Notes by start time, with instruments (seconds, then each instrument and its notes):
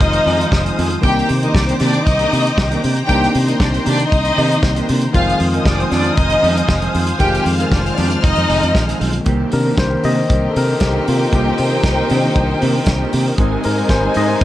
Already playing: tine electric piano D#3 G#3 C4 F4, string section C5 F5 G#5 D#6
0.00 fingered electric bass F1, violin section D#4 D#5, kick, closed hi-hat
0.13 muted clean electric guitar stroke, closed hi-hat
0.26 fingered electric bass F2, clean electric guitar F3 C4 D#4 G#4, open hi-hat
0.39 muted clean electric guitar stroke, closed hi-hat
0.51 fingered electric bass F1, muted clean electric guitar stroke, kick, snare
0.64 clean electric guitar F3 C4 D#4 G#4, closed hi-hat
0.77 fingered electric bass F2, clean electric guitar F3 C4 D#4 G#4, open hi-hat
0.90 muted clean electric guitar stroke, closed hi-hat
1.01 fingered electric bass C2, tine electric piano D#3 A#3 C4 D#4, clean electric guitar D#3 A#3 D4 G4, violin section G4 G5, string section G5 A#5 D6, kick, closed hi-hat
1.19 closed hi-hat
1.29 fingered electric bass C3, muted clean electric guitar stroke, open hi-hat
1.43 clean electric guitar D#3 A#3 D4 A#4, violin section D#4 D#5, closed hi-hat
1.55 fingered electric bass C2, violin section D4 D5, muted clean electric guitar stroke, kick, snare
1.69 clean electric guitar D#3 A#3 D4 G4, violin section C4 C5, closed hi-hat
1.80 fingered electric bass C3, clean electric guitar D#3 A#3 D4 G4, violin section D4 D5, snare, open hi-hat
1.93 muted clean electric guitar stroke, closed hi-hat
2.06 fingered electric bass C2, violin section D#4 D#5, muted clean electric guitar stroke, kick, closed hi-hat
2.19 clean electric guitar D#3 A#3 D4 G4, closed hi-hat
2.31 fingered electric bass C3, clean electric guitar D#3 A#3 D4 G4, open hi-hat
2.46 muted clean electric guitar stroke, closed hi-hat
2.58 fingered electric bass C2, muted clean electric guitar stroke, kick, snare
2.71 clean electric guitar D#3 A#3 D4 G4, closed hi-hat
2.82 fingered electric bass C3, clean electric guitar D#3 A#3 D4 G4, open hi-hat
2.96 muted clean electric guitar stroke, closed hi-hat
3.07 fingered electric bass C2, clean electric guitar D#3 A#3 D4 G4, tine electric piano A#3 C4 D4 D#4, violin section G4 G5, string section C6, kick, closed hi-hat
3.24 closed hi-hat
3.35 fingered electric bass C3, muted clean electric guitar stroke, open hi-hat
3.47 clean electric guitar D#3 A#3 D4 A#4, violin section D#4 D#5, closed hi-hat
3.59 fingered electric bass C2, violin section D4 D5, muted clean electric guitar stroke, kick, snare
3.73 clean electric guitar D#3 A#3 D4 G4, violin section C4 C5, closed hi-hat
3.84 fingered electric bass C3, clean electric guitar D#3 A#3 D4 G4, violin section D4 D5, open hi-hat
3.98 muted clean electric guitar stroke, closed hi-hat
4.09 fingered electric bass C2, violin section D#4 D#5, kick, closed hi-hat
4.25 muted clean electric guitar stroke, closed hi-hat
4.36 fingered electric bass C3, clean electric guitar D#3 A#3 D4 G4, tine electric piano D#3 A#3 C4 D#4, open hi-hat
4.50 muted clean electric guitar stroke, closed hi-hat
4.63 fingered electric bass C2, kick, snare
4.76 clean electric guitar D#3 A#3 D4 G4, closed hi-hat
4.89 fingered electric bass C3, clean electric guitar D#3 A#3 D4 G4, open hi-hat
5.02 muted clean electric guitar stroke, closed hi-hat
5.13 fingered electric bass F1, tine electric piano D#3 G#3 C4 F4, clean electric guitar F3 C4 D#4 G#4, violin section F4 F5, string section C5 F5 G#5 D#6, kick, closed hi-hat
5.29 closed hi-hat
5.39 fingered electric bass F2, muted clean electric guitar stroke, open hi-hat
5.53 clean electric guitar F3 C4 D#4 A#4, violin section D#4 D#5, closed hi-hat
5.65 fingered electric bass F1, violin section D4 D5, muted clean electric guitar stroke, kick, snare
5.79 clean electric guitar F3 C4 D#4 G#4, violin section C4 C5, closed hi-hat
5.90 fingered electric bass F2, clean electric guitar F3 C4 D#4 G#4, violin section D4 D5, snare, open hi-hat
6.04 muted clean electric guitar stroke, closed hi-hat
6.15 fingered electric bass F1, violin section D#4 D#5, kick, closed hi-hat
6.30 muted clean electric guitar stroke, closed hi-hat
6.42 fingered electric bass F2, clean electric guitar F3 C4 D#4 G#4, open hi-hat
6.56 muted clean electric guitar stroke, closed hi-hat
6.69 fingered electric bass F1, muted clean electric guitar stroke, kick, snare
6.82 clean electric guitar F3 C4 D#4 G#4, closed hi-hat
6.94 fingered electric bass F2, clean electric guitar F3 C4 D#4 G#4, open hi-hat
7.07 muted clean electric guitar stroke, closed hi-hat
7.18 fingered electric bass F1, tine electric piano D#3 G#3 C4, clean electric guitar F3 C4 D#4 G#4, violin section G4 G5, string section F6, kick, closed hi-hat
7.23 tine electric piano F4
7.35 closed hi-hat
7.46 fingered electric bass F2, muted clean electric guitar stroke, open hi-hat
7.59 clean electric guitar F3 C4 D#4 A#4, violin section F4 F5, closed hi-hat
7.72 fingered electric bass F1, violin section D4 D5, kick, snare
7.84 clean electric guitar F3 C4 D#4 G#4, violin section C4 C5, closed hi-hat
7.96 fingered electric bass F2, clean electric guitar F3 C4 D#4 G#4, violin section D4 D5, open hi-hat
8.11 muted clean electric guitar stroke, closed hi-hat
8.23 fingered electric bass F1, violin section D#4 D#5, kick, closed hi-hat
8.36 fingered electric bass F2, muted clean electric guitar stroke, closed hi-hat
8.48 fingered electric bass F1, clean electric guitar F3 C4 D#4 G#4, open hi-hat
8.61 fingered electric bass F2, muted clean electric guitar stroke, closed hi-hat
8.75 fingered electric bass A#1, kick, snare
8.87 clean electric guitar F3 C4 D#4 G#4, closed hi-hat
8.99 fingered electric bass B1, clean electric guitar F3 C4 D#4 G#4, open hi-hat
9.13 muted clean electric guitar stroke, closed hi-hat
9.24 fingered electric bass C2, string section D#3 A#3 C4 G4, clean electric guitar D#3 A#3 C4 G4, kick, closed hi-hat
9.52 fingered electric bass C3, tine electric piano D#3 A#3 D4 A#4, muted clean electric guitar stroke, open hi-hat
9.65 clean electric guitar D#3 A#3 C4 A#4
9.77 fingered electric bass C2, tine electric piano C5, muted clean electric guitar stroke, kick, snare, closed hi-hat
9.91 clean electric guitar D#3 A#3 C4 G4
10.03 fingered electric bass C3, clean electric guitar D#3 A#3 C4 G4, tine electric piano D#5, open hi-hat
10.17 muted clean electric guitar stroke
10.29 fingered electric bass C2, violin section D#4 C5 G5, muted clean electric guitar stroke, kick, closed hi-hat
10.43 muted clean electric guitar stroke
10.50 tine electric piano A4
10.56 fingered electric bass C3, tine electric piano A#4, open hi-hat
10.68 muted clean electric guitar stroke
10.80 fingered electric bass C2, tine electric piano G4, muted clean electric guitar stroke, kick, snare, closed hi-hat
10.94 clean electric guitar D#3 A#3 C4 G4
11.07 fingered electric bass C3, clean electric guitar D#3 A#3 C4 G4, tine electric piano F4, open hi-hat
11.21 muted clean electric guitar stroke
11.33 fingered electric bass C2, clean electric guitar D#3 A#3 C4 G4, tine electric piano G4, kick, closed hi-hat
11.58 fingered electric bass C3, muted clean electric guitar stroke, open hi-hat
11.71 clean electric guitar D#3 A#3 C4 A#4
11.84 fingered electric bass C2, muted clean electric guitar stroke, kick, snare, closed hi-hat
11.97 clean electric guitar D#3 A#3 C4 G4
12.09 fingered electric bass C3, clean electric guitar D#3 A#3 C4 G4, tine electric piano D#3 A#3 D4, open hi-hat
12.23 muted clean electric guitar stroke
12.36 fingered electric bass C2, kick, closed hi-hat
12.49 muted clean electric guitar stroke
12.61 fingered electric bass C3, clean electric guitar D#3 A#3 C4 G4, open hi-hat
12.76 muted clean electric guitar stroke
12.86 fingered electric bass C2, muted clean electric guitar stroke, kick, snare, closed hi-hat
13.01 clean electric guitar D#3 A#3 C4 G4
13.12 fingered electric bass C3, clean electric guitar D#3 A#3 C4 G4, open hi-hat
13.26 muted clean electric guitar stroke
13.38 fingered electric bass G#1, string section C3 G#3 D#4, clean electric guitar G#3 C4 D#4 G#4, tine electric piano G#3 C4 D#4, violin section D#4 C5 G#5, kick, closed hi-hat
13.64 fingered electric bass G#2, tine electric piano A#4, muted clean electric guitar stroke, open hi-hat
13.78 clean electric guitar G#3 C4 D#4 A#4
13.89 fingered electric bass G#1, tine electric piano C5, kick, snare, closed hi-hat
14.05 clean electric guitar G#3 C4 D#4 G#4
14.14 fingered electric bass G#2, clean electric guitar G#3 C4 D#4 G#4, tine electric piano D#5, open hi-hat
14.29 muted clean electric guitar stroke
14.41 closed hi-hat